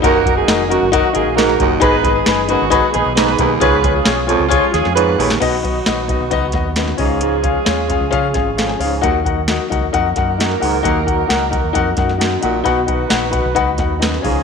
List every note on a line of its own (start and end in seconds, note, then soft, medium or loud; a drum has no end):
0.00 0.41 F#1 loud
0.00 0.21 D#2 medium
0.00 3.58 D#3 medium
0.00 1.81 F#3 medium
0.00 1.81 A#3 medium
0.00 0.15 D#4 loud
0.00 0.16 F#4 loud
0.00 0.16 A#4 loud
0.00 kick loud
0.04 0.35 A#3 loud
0.04 0.35 D#4 loud
0.04 0.35 F#4 loud
0.04 1.81 F#4 medium
0.04 0.35 A#4 loud
0.04 closed hi-hat medium
0.25 0.38 D#4 medium
0.25 0.38 F#4 medium
0.25 0.38 A#4 medium
0.25 kick loud
0.25 closed hi-hat medium
0.36 0.68 G#3 medium
0.36 0.68 A#3 medium
0.36 0.68 D#4 medium
0.36 0.68 G#4 medium
0.48 0.76 F1 loud
0.48 0.60 D#4 loud
0.48 0.61 F#4 medium
0.48 0.61 A#4 loud
0.48 snare loud
0.48 closed hi-hat medium
0.69 0.88 F#2 medium
0.69 0.88 F#3 medium
0.69 0.88 A#3 medium
0.69 0.82 D#4 medium
0.69 0.88 D#4 medium
0.69 0.83 F#4 medium
0.69 0.88 F#4 medium
0.69 0.83 A#4 loud
0.69 closed hi-hat medium
0.82 1.01 F#1 medium
0.92 1.10 F#3 medium
0.92 1.10 A#3 medium
0.92 1.05 D#4 loud
0.92 1.10 D#4 medium
0.92 1.10 F#4 medium
0.92 1.05 F#4 loud
0.92 1.05 A#4 loud
0.92 kick medium
0.92 closed hi-hat medium
1.13 1.25 G#1 medium
1.13 1.32 G#3 medium
1.13 1.32 C#4 medium
1.13 1.27 D#4 medium
1.13 1.32 F4 medium
1.13 1.27 F#4 medium
1.13 1.32 G#4 medium
1.13 1.27 A#4 loud
1.13 closed hi-hat medium
1.27 1.55 A#1 medium
1.35 1.55 G#2 medium
1.35 1.68 A#3 loud
1.35 1.49 D#4 medium
1.35 1.69 D#4 medium
1.35 1.68 F#4 loud
1.35 1.49 F#4 medium
1.35 1.68 A#4 loud
1.35 1.50 A#4 medium
1.35 snare loud
1.35 closed hi-hat medium
1.49 snare soft
1.59 1.79 F#1 medium
1.59 1.78 D#2 medium
1.59 1.72 D#4 medium
1.59 1.72 F#4 medium
1.59 1.73 A#4 medium
1.59 kick loud
1.59 closed hi-hat medium
1.80 2.20 G#1 loud
1.80 2.00 G#2 medium
1.80 5.38 G#3 medium
1.80 3.59 B3 medium
1.80 2.14 B3 loud
1.80 1.94 D#4 loud
1.80 2.14 D#4 loud
1.80 1.94 G#4 loud
1.80 3.58 G#4 medium
1.80 2.13 G#4 loud
1.80 1.94 B4 loud
1.80 2.14 B4 loud
1.80 kick loud
1.80 closed hi-hat loud
2.03 2.16 D#4 loud
2.03 2.17 G#4 medium
2.03 2.17 B4 loud
2.03 kick medium
2.03 closed hi-hat medium
2.14 2.47 G#3 medium
2.14 2.47 B3 medium
2.14 2.47 D#4 medium
2.14 2.47 G#4 medium
2.26 2.56 F#1 loud
2.26 2.39 D#4 medium
2.26 2.39 G#4 medium
2.26 2.40 B4 loud
2.26 snare loud
2.26 closed hi-hat medium
2.48 2.68 F#2 medium
2.48 2.67 F#3 medium
2.48 2.67 B3 medium
2.48 2.61 D#4 medium
2.48 2.67 D#4 medium
2.48 2.67 F#4 medium
2.48 2.62 G#4 medium
2.48 2.62 B4 loud
2.48 closed hi-hat medium
2.62 2.80 G#1 medium
2.70 2.89 F#3 medium
2.70 2.89 B3 medium
2.70 2.89 D#4 medium
2.70 2.84 D#4 loud
2.70 2.89 F#4 medium
2.70 2.84 G#4 loud
2.70 2.84 B4 loud
2.70 kick medium
2.70 closed hi-hat medium
2.91 3.11 G#3 medium
2.91 3.11 B3 medium
2.91 3.11 D#4 medium
2.91 3.06 D#4 medium
2.91 3.11 G#4 loud
2.91 3.06 G#4 medium
2.91 3.07 B4 loud
2.91 closed hi-hat medium
2.95 3.04 A#1 loud
3.06 3.34 B1 loud
3.15 3.35 G#2 medium
3.15 3.48 B3 medium
3.15 3.48 D#4 loud
3.15 3.29 D#4 medium
3.15 3.48 G#4 loud
3.15 3.30 G#4 medium
3.15 3.48 B4 loud
3.15 3.30 B4 medium
3.15 snare loud
3.15 closed hi-hat loud
3.28 snare soft
3.38 3.58 B1 loud
3.38 3.57 D#2 loud
3.38 3.51 D#4 medium
3.38 3.52 G#4 medium
3.38 3.52 B4 medium
3.38 kick medium
3.38 closed hi-hat medium
3.60 3.99 C#2 loud
3.60 3.79 G#2 medium
3.60 5.39 F3 medium
3.60 3.92 B3 loud
3.60 5.39 C#4 medium
3.60 3.92 F4 loud
3.60 3.73 F4 loud
3.60 5.39 G#4 medium
3.60 3.92 G#4 loud
3.60 3.74 G#4 loud
3.60 3.92 B4 loud
3.60 3.74 C#5 loud
3.60 kick loud
3.60 closed hi-hat loud
3.83 3.96 F4 medium
3.83 3.96 G#4 medium
3.83 3.97 C#5 medium
3.83 kick loud
3.83 closed hi-hat medium
3.95 4.27 G#3 medium
3.95 4.27 C#4 medium
3.95 4.26 F4 medium
3.95 4.27 G#4 medium
4.04 4.35 B1 loud
4.04 4.18 F4 medium
4.04 4.18 G#4 medium
4.04 4.19 C#5 loud
4.04 snare loud
4.04 closed hi-hat medium
4.27 4.47 F2 medium
4.27 4.46 F3 medium
4.27 4.47 G#3 medium
4.27 4.47 C#4 medium
4.27 4.40 F4 medium
4.27 4.46 F4 medium
4.27 4.41 G#4 medium
4.27 4.41 C#5 loud
4.27 closed hi-hat medium
4.40 4.59 C#2 medium
4.48 4.69 F3 medium
4.48 4.69 G#3 medium
4.48 4.69 C#4 medium
4.48 4.62 F4 loud
4.48 4.69 F4 medium
4.48 4.63 G#4 loud
4.48 4.63 C#5 loud
4.48 kick medium
4.48 closed hi-hat loud
4.71 4.83 D#2 medium
4.71 4.91 G#3 medium
4.71 4.92 C#4 medium
4.71 4.85 F4 medium
4.71 4.92 F4 medium
4.71 4.86 G#4 medium
4.71 4.91 G#4 medium
4.71 4.86 C#5 medium
4.71 snare soft
4.71 closed hi-hat medium
4.85 5.14 F2 loud
4.85 snare soft
4.95 5.15 G#2 medium
4.95 5.27 B3 loud
4.95 5.08 F4 medium
4.95 5.28 F4 loud
4.95 5.08 G#4 medium
4.95 5.28 G#4 loud
4.95 5.27 B4 loud
4.95 5.09 C#5 medium
4.95 closed hi-hat medium
5.18 5.38 A#1 medium
5.18 5.37 D#2 medium
5.18 5.31 F4 medium
5.18 5.31 G#4 medium
5.18 5.32 C#5 medium
5.18 open hi-hat medium
5.30 snare medium
5.40 5.79 B1 medium
5.40 5.59 B2 medium
5.40 6.98 D#3 medium
5.40 6.98 F#3 medium
5.40 6.74 F#3 medium
5.40 5.53 B3 loud
5.40 6.98 B3 medium
5.40 6.74 B3 medium
5.40 5.54 D#4 medium
5.40 6.75 D#4 medium
5.40 6.98 F#4 medium
5.40 6.74 F#4 medium
5.40 5.54 F#4 loud
5.40 5.54 D#5 loud
5.40 kick loud
5.40 closed hi-hat medium
5.40 crash medium
5.63 5.76 B3 medium
5.63 5.77 D#4 medium
5.63 5.77 F#4 medium
5.63 5.77 D#5 medium
5.63 kick medium
5.63 closed hi-hat medium
5.86 6.16 A#1 medium
5.86 5.99 B3 medium
5.86 5.99 D#4 medium
5.86 5.99 F#4 medium
5.86 5.99 D#5 loud
5.86 snare loud
5.86 closed hi-hat medium
6.08 6.21 B3 medium
6.08 6.22 D#4 medium
6.08 6.22 F#4 medium
6.08 6.22 D#5 medium
6.08 kick medium
6.08 closed hi-hat medium
6.20 6.32 B1 medium
6.31 6.54 C#2 medium
6.31 6.44 B3 loud
6.31 6.44 D#4 loud
6.31 6.44 F#4 medium
6.31 6.45 D#5 loud
6.31 kick medium
6.31 closed hi-hat medium
6.52 6.92 D#2 medium
6.52 6.67 B3 medium
6.52 6.67 D#4 medium
6.52 6.67 F#4 medium
6.52 6.67 D#5 medium
6.52 kick medium
6.52 snare soft
6.52 closed hi-hat medium
6.76 6.95 F#2 medium
6.76 6.90 B3 medium
6.76 6.90 D#4 medium
6.76 6.90 F#4 medium
6.76 6.90 D#5 medium
6.76 snare medium
6.76 closed hi-hat medium
6.88 snare soft
6.97 7.56 C#2 medium
6.97 7.18 G#2 medium
6.97 9.01 F3 medium
6.97 8.77 G#3 medium
6.97 9.01 G#3 medium
6.97 7.35 C#4 medium
6.97 8.76 C#4 medium
6.97 9.01 C#4 medium
6.97 7.35 F4 medium
6.97 8.77 F4 medium
6.97 7.35 G#4 medium
6.97 8.77 G#4 medium
6.97 9.01 G#4 medium
6.97 7.05 D#5 medium
6.97 kick loud
6.97 open hi-hat medium
7.05 7.39 F5 medium
7.21 7.40 G#2 medium
7.21 closed hi-hat medium
7.42 7.56 C#4 medium
7.42 7.57 F4 medium
7.42 7.57 G#4 medium
7.42 7.57 F5 medium
7.42 kick medium
7.42 closed hi-hat medium
7.65 7.96 D#2 medium
7.65 7.79 C#4 medium
7.65 7.79 F4 medium
7.65 7.79 G#4 medium
7.65 7.80 F5 medium
7.65 snare loud
7.65 closed hi-hat medium
7.88 8.02 C#4 medium
7.88 8.02 F4 medium
7.88 8.03 G#4 medium
7.88 8.03 F5 medium
7.88 kick medium
7.88 closed hi-hat medium
8.00 8.10 C#2 medium
8.11 8.32 C#3 medium
8.11 8.24 C#4 loud
8.11 8.24 F4 loud
8.11 8.25 G#4 loud
8.11 8.25 F5 loud
8.11 kick medium
8.11 closed hi-hat medium
8.34 8.74 G#1 medium
8.34 8.47 C#4 medium
8.34 8.47 F4 medium
8.34 8.47 G#4 medium
8.34 8.48 F5 loud
8.34 kick medium
8.34 snare soft
8.34 closed hi-hat medium
8.57 8.76 F2 medium
8.57 8.70 C#4 medium
8.57 8.70 F4 medium
8.57 8.71 G#4 medium
8.57 8.71 F5 medium
8.57 snare medium
8.57 closed hi-hat medium
8.69 9.01 G#5 medium
8.69 snare soft
8.79 8.99 C#2 medium
8.79 8.99 G#2 medium
8.79 8.92 C#4 medium
8.79 8.93 F4 medium
8.79 8.93 G#4 medium
8.79 8.93 F5 medium
8.79 open hi-hat medium
9.01 9.21 D#2 medium
9.01 9.57 D#2 loud
9.01 14.21 D#3 medium
9.01 14.21 F#3 medium
9.01 12.63 A#3 medium
9.01 9.15 D#4 loud
9.01 9.15 F#4 loud
9.01 14.21 F#4 medium
9.01 9.16 A#4 loud
9.01 9.16 F#5 loud
9.01 kick loud
9.01 closed hi-hat medium
9.24 9.38 D#4 medium
9.24 9.38 F#4 medium
9.24 9.38 A#4 medium
9.24 9.39 F#5 loud
9.24 kick medium
9.24 closed hi-hat medium
9.48 9.61 D#4 medium
9.48 9.61 F#4 medium
9.48 9.62 A#4 medium
9.48 9.62 F#5 medium
9.48 snare loud
9.48 closed hi-hat medium
9.70 9.81 C#2 loud
9.70 9.83 D#4 medium
9.70 9.84 F#4 medium
9.70 9.84 A#4 medium
9.70 9.84 F#5 medium
9.70 kick medium
9.70 closed hi-hat medium
9.82 9.92 D#2 medium
9.93 10.13 F2 medium
9.93 12.39 A#3 medium
9.93 10.06 D#4 loud
9.93 12.39 D#4 medium
9.93 12.39 F#4 medium
9.93 10.06 F#4 loud
9.93 12.39 A#4 medium
9.93 10.06 A#4 medium
9.93 10.07 F#5 loud
9.93 kick medium
9.93 closed hi-hat medium
10.16 10.55 F#2 medium
10.16 10.29 D#4 medium
10.16 10.29 F#4 medium
10.16 10.29 A#4 medium
10.16 10.30 F#5 loud
10.16 kick medium
10.16 snare soft
10.16 closed hi-hat medium
10.38 10.57 F#2 medium
10.38 10.51 D#4 medium
10.38 10.52 F#4 medium
10.38 10.52 A#4 medium
10.38 10.52 F#5 medium
10.38 snare loud
10.38 closed hi-hat medium
10.51 snare soft
10.60 10.81 C#2 medium
10.60 10.80 G#2 medium
10.60 10.73 D#4 medium
10.60 10.74 F#4 medium
10.60 10.74 A#4 medium
10.60 10.74 F#5 medium
10.60 open hi-hat medium
10.83 11.23 D#2 loud
10.83 11.03 D#2 medium
10.83 10.96 D#4 loud
10.83 10.97 F#4 medium
10.83 10.97 A#4 loud
10.83 10.97 F#5 loud
10.83 kick loud
10.83 closed hi-hat medium
11.06 11.19 D#4 medium
11.06 11.19 F#4 medium
11.06 11.20 A#4 medium
11.06 11.20 F#5 medium
11.06 kick medium
11.06 closed hi-hat medium
11.27 11.58 C#2 medium
11.27 11.41 D#4 medium
11.27 11.42 F#4 medium
11.27 11.42 A#4 medium
11.27 11.42 F#5 medium
11.27 snare loud
11.27 closed hi-hat medium
11.50 11.64 D#4 medium
11.50 11.64 F#4 medium
11.50 11.65 A#4 medium
11.50 11.65 F#5 medium
11.50 kick medium
11.50 closed hi-hat medium
11.64 11.73 D#2 medium
11.73 11.94 F2 medium
11.73 11.87 D#4 loud
11.73 11.87 F#4 loud
11.73 11.87 A#4 loud
11.73 11.88 F#5 loud
11.73 kick medium
11.73 closed hi-hat medium
11.97 12.36 F#2 medium
11.97 12.10 D#4 medium
11.97 12.10 F#4 medium
11.97 12.11 A#4 medium
11.97 12.11 F#5 medium
11.97 kick medium
11.97 snare soft
11.97 closed hi-hat medium
12.09 snare soft
12.18 12.39 F#2 medium
12.18 12.32 D#4 medium
12.18 12.32 F#4 medium
12.18 12.32 A#4 medium
12.18 12.33 F#5 medium
12.18 snare loud
12.18 closed hi-hat medium
12.32 snare soft
12.41 12.62 A#1 medium
12.41 12.61 A#2 medium
12.41 12.55 D#4 medium
12.41 12.55 F#4 medium
12.41 12.55 A#4 medium
12.41 12.56 F#5 medium
12.41 closed hi-hat medium
12.64 13.04 B1 loud
12.64 12.84 B2 medium
12.64 13.99 B3 medium
12.64 14.23 B3 medium
12.64 12.77 D#4 loud
12.64 13.99 D#4 medium
12.64 12.78 F#4 medium
12.64 13.99 F#4 medium
12.64 12.78 B4 loud
12.64 13.99 B4 medium
12.64 12.78 F#5 loud
12.64 kick loud
12.64 closed hi-hat medium
12.86 13.00 D#4 medium
12.86 13.00 F#4 medium
12.86 13.01 B4 medium
12.86 13.01 F#5 medium
12.86 kick medium
12.86 closed hi-hat medium
13.09 13.40 A#1 medium
13.09 13.23 D#4 medium
13.09 13.23 F#4 medium
13.09 13.24 B4 medium
13.09 13.24 F#5 medium
13.09 snare loud
13.09 closed hi-hat medium
13.30 13.45 D#4 medium
13.30 13.45 F#4 medium
13.30 13.45 B4 medium
13.30 13.46 F#5 medium
13.30 kick medium
13.30 closed hi-hat medium
13.45 13.57 B1 medium
13.55 13.79 C#2 medium
13.55 13.68 D#4 loud
13.55 13.69 F#4 loud
13.55 13.69 B4 loud
13.55 13.69 F#5 loud
13.55 kick medium
13.55 closed hi-hat medium
13.78 14.17 D#2 medium
13.78 13.91 D#4 medium
13.78 13.91 F#4 medium
13.78 13.92 B4 medium
13.78 13.92 F#5 loud
13.78 kick medium
13.78 snare soft
13.78 closed hi-hat medium
13.99 14.20 F#2 medium
13.99 14.13 D#4 medium
13.99 14.14 F#4 medium
13.99 14.14 B4 medium
13.99 14.14 F#5 medium
13.99 snare loud
13.99 closed hi-hat medium
14.14 snare soft
14.21 14.43 C#2 medium
14.21 14.43 G#2 medium
14.21 14.43 F3 medium
14.21 14.43 G#3 medium
14.21 14.43 C#4 medium
14.21 14.43 F4 medium
14.21 14.43 G#4 medium
14.21 14.43 F5 medium
14.21 kick loud
14.21 open hi-hat medium
14.26 14.43 G#3 medium
14.26 14.43 C#4 medium
14.26 14.43 G#4 medium